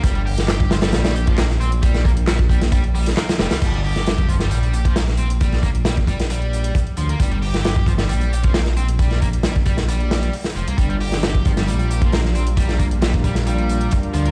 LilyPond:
<<
  \new Staff \with { instrumentName = "Analog synth pad" } { \time 4/4 \key g \minor \tempo 4 = 134 r1 | r1 | r1 | r1 |
r1 | r1 | <g d' f' bes'>1~ | <g d' f' bes'>1 | }
  \new Staff \with { instrumentName = "Distorted electric guitar" } { \clef bass \time 4/4 \key g \minor g16 g16 g'4 f16 g16 g8 g'16 f16 bes16 r16 c'16 r16 | g8 bes16 r16 g16 r16 g16 r16 g16 r16 g16 r16 bes16 r16 g16 g16 | g16 g16 g'4 f16 g16 g8 g'16 f16 bes16 r16 c'16 r16 | g8 bes16 r16 g16 r16 g16 r16 g4 r8 f16 bes16 |
g16 g16 g'4 f16 g16 g8 g'16 f16 bes16 r16 c'16 r16 | g8 bes16 r16 g16 r16 g16 r16 g4 r8 f16 bes16 | g16 g16 g'4 f16 g16 g8 g'16 f16 bes16 r16 c'16 r16 | g8 bes16 r16 g16 r16 g16 r16 g4 r8 f16 bes16 | }
  \new Staff \with { instrumentName = "Detuned saw bass" } { \clef bass \time 4/4 \key g \minor g,,2 bes,,2~ | bes,,2. r8 f,,16 c,16 | g,,2 bes,,2~ | bes,,2. r8 d,8 |
g,,2 bes,,2~ | bes,,2. r8 f,,16 c,16 | g,,2 bes,,2~ | bes,,2. r8 d,8 | }
  \new DrumStaff \with { instrumentName = "Drums" } \drummode { \time 4/4 <hh bd>16 hh16 hho16 <hh sn>16 <hc hh sn>16 <hh bd>16 <hh sn>16 <hh sn>16 <hh sn>16 <hh sn>16 hh16 <hh bd>16 <hc hh sn>16 <hh sn>16 hh16 hh16 | <hh bd>16 <hh sn>16 <hh bd>16 hh16 <hc hh sn>16 <hh bd>16 <hh bd>16 <hh sn>16 <hh bd>16 hh16 hho16 <hh sn>16 <hc hh sn>16 <hh sn>16 <hh sn>16 <hh sn>16 | <cymc hh bd>16 hh16 hho16 <hh sn>16 <hh sn>16 <hh bd>16 <hh bd>16 <hh sn>16 hh16 hh16 hh16 <hh bd>16 <hh sn>16 <hh sn>16 hh16 hh16 | <hh bd>16 <hh sn>16 <hh bd>16 hh16 <hh sn>16 <hh bd>16 <hh bd>16 <hh sn>16 hh16 hh16 hh16 hh16 <hh bd>16 hh16 hh16 hh16 |
<hh bd>16 hh16 hho16 <hh sn>16 <hh sn>16 <hh bd>16 <hh bd>16 <hh sn>16 hh16 hh16 hh16 <hh bd>16 <hh sn>16 <hh sn>16 hh16 hh16 | <hh bd>16 <hh sn>16 <hh bd>16 hh16 <hh sn>16 <hh bd>16 <hh bd>16 <hh sn>16 hh16 hh16 <hh sn>16 hh16 <hh hho>16 <hh sn>16 hh16 hh16 | <hh bd>16 hh16 hho16 <hh sn>16 <hh sn>16 <hh bd>16 <hh bd>16 <hh sn>16 hh16 hh16 hh16 <hh bd>16 <hh sn>16 <hh sn>16 hh16 hh16 | <hh bd>16 <hh sn>16 <hh bd>16 hh16 <hh sn>16 <hh bd>16 <hh bd>16 <hh sn>16 hh16 hh16 hh16 hh16 <hh bd>16 hh16 hh16 hh16 | }
>>